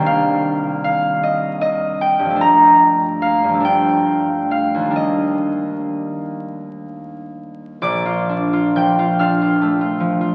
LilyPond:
<<
  \new Staff \with { instrumentName = "Harp" } { \time 6/8 \key bes \major \tempo 4. = 47 << { <ees'' f'' g''>4 f''8 ees''8 ees''8 g''8 | bes''4 f''8 g''4 f''8 | ees''2. | <d'' d'''>4 <g'' g'''>8 <f'' f'''>4. | } \\ { r2. | r2. | r2. | bes,,16 f'16 d'16 f'16 f16 f'16 d'16 f'16 a16 f'16 f16 f'16 | } >> }
  \new Staff \with { instrumentName = "Harp" } { \clef bass \time 6/8 \key bes \major <c, ees bes d'>2. | <g, f a d'>4. <g, f a d'>4. | <ees, ees g d'>2.~ | <ees, ees g d'>2. | }
>>